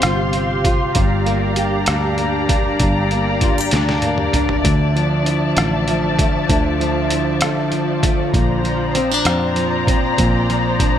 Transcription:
Already playing: nylon-string guitar C3 C4 G4, string section G4 C5 F5 C6
0.02 fingered electric bass G1, nylon-string guitar F4, cross-stick, closed hi-hat
0.33 nylon-string guitar C4, closed hi-hat
0.65 nylon-string guitar F4, kick, closed hi-hat
0.95 fingered electric bass G1, nylon-string guitar G2, string section D5 A#5, kick, closed hi-hat
1.26 nylon-string guitar A#3, closed hi-hat
1.56 nylon-string guitar G4, closed hi-hat
1.86 fingered electric bass D2, nylon-string guitar D4, cross-stick, closed hi-hat
2.18 nylon-string guitar A#3, closed hi-hat
2.49 nylon-string guitar D4, kick, closed hi-hat
2.80 fingered electric bass G1, nylon-string guitar G2, kick, closed hi-hat
3.11 nylon-string guitar A#3, closed hi-hat
3.41 nylon-string guitar F4, kick, closed hi-hat
3.58 nylon-string guitar G4
3.71 fingered electric bass D2, nylon-string guitar D4, snare, closed hi-hat
3.89 snare
4.02 nylon-string guitar A#3, closed hi-hat, high tom
4.18 mid tom
4.33 nylon-string guitar D4, closed hi-hat, mid tom
4.49 floor tom
4.64 fingered electric bass D2, nylon-string guitar D3, string section F3 E5 A5, kick, closed hi-hat
4.96 nylon-string guitar F3, closed hi-hat
5.26 nylon-string guitar E4, closed hi-hat
5.56 fingered electric bass A1, nylon-string guitar A3, cross-stick, closed hi-hat
5.88 nylon-string guitar F3, closed hi-hat
6.19 nylon-string guitar A3, kick, closed hi-hat
6.49 fingered electric bass D2, nylon-string guitar D3, kick, closed hi-hat
6.80 nylon-string guitar F3, closed hi-hat
7.10 nylon-string guitar E4, closed hi-hat
7.41 fingered electric bass A1, nylon-string guitar A3, cross-stick, closed hi-hat
7.72 nylon-string guitar F3, closed hi-hat
8.03 nylon-string guitar A3, kick, closed hi-hat
8.34 fingered electric bass A#1, nylon-string guitar A#2, string section C5 D5 A#5, kick, closed hi-hat
8.64 nylon-string guitar F3, closed hi-hat
8.95 nylon-string guitar C4, closed hi-hat
9.11 nylon-string guitar D4
9.25 fingered electric bass F2, nylon-string guitar C4, cross-stick, closed hi-hat
9.56 nylon-string guitar F3, closed hi-hat
9.87 nylon-string guitar C4, kick, closed hi-hat
10.18 fingered electric bass A#1, nylon-string guitar A#2, kick, closed hi-hat
10.50 nylon-string guitar F3, closed hi-hat
10.80 nylon-string guitar D4, kick, closed hi-hat

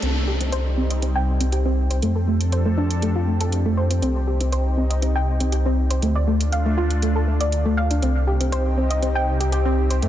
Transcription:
0.02 detuned saw bass C2, analog synth pad G3 C4 D#4, synth pluck C4, closed hi-hat
0.27 synth pluck G4
0.41 synth pluck C4, closed hi-hat
0.52 synth pluck C5, closed hi-hat
0.77 synth pluck C4
0.90 synth pluck D#5, closed hi-hat
1.02 synth pluck C4, closed hi-hat
1.15 synth pluck G5
1.40 synth pluck C4, closed hi-hat
1.52 synth pluck G4, closed hi-hat
1.65 synth pluck C4
1.90 synth pluck C5, closed hi-hat
2.02 detuned saw bass F2, analog synth pad F3 D4 G4 A4, synth pluck A3, closed hi-hat
2.16 synth pluck A4
2.27 synth pluck A3
2.41 closed hi-hat
2.52 synth pluck C5, closed hi-hat
2.66 synth pluck A3
2.77 synth pluck D4
2.91 closed hi-hat
3.02 synth pluck A3, closed hi-hat
3.16 synth pluck F4
3.27 synth pluck A3
3.40 synth pluck A4, closed hi-hat
3.52 closed hi-hat
3.66 synth pluck A3
3.77 synth pluck C5
3.90 synth pluck C4, closed hi-hat
4.02 detuned saw bass C2, synth pluck C4, analog synth pad D#4, closed hi-hat
4.27 synth pluck G4
4.40 synth pluck C4, closed hi-hat
4.52 synth pluck C5, closed hi-hat
4.77 synth pluck C4
4.90 synth pluck D#5, closed hi-hat
5.02 synth pluck C4, closed hi-hat
5.16 synth pluck G5
5.40 synth pluck C4, closed hi-hat
5.52 synth pluck G4, closed hi-hat
5.66 synth pluck C4
5.91 synth pluck C5, closed hi-hat
6.02 detuned saw bass D2, analog synth pad A3 D4 F4, synth pluck A3, closed hi-hat
6.15 synth pluck D5
6.27 synth pluck A3
6.41 closed hi-hat
6.52 synth pluck F5, closed hi-hat
6.66 synth pluck A3
6.77 synth pluck F4
6.91 closed hi-hat
7.02 synth pluck A3, closed hi-hat
7.16 synth pluck A4
7.28 synth pluck A3
7.41 synth pluck D5, closed hi-hat
7.52 closed hi-hat
7.65 synth pluck A3
7.77 synth pluck F5
7.91 synth pluck D4, closed hi-hat
8.02 detuned saw bass C2, synth pluck C4, analog synth pad C4 D#4 G4, closed hi-hat
8.27 synth pluck G4
8.40 synth pluck C4, closed hi-hat
8.52 synth pluck C5, closed hi-hat
8.77 synth pluck C4
8.90 synth pluck D#5, closed hi-hat
9.02 synth pluck C4, closed hi-hat
9.15 synth pluck G5
9.40 synth pluck G4, closed hi-hat
9.52 synth pluck G4, closed hi-hat
9.65 synth pluck C4
9.90 synth pluck C5, closed hi-hat
10.02 detuned saw bass F2, analog synth pad F3 D4 A4, synth pluck A3, closed hi-hat

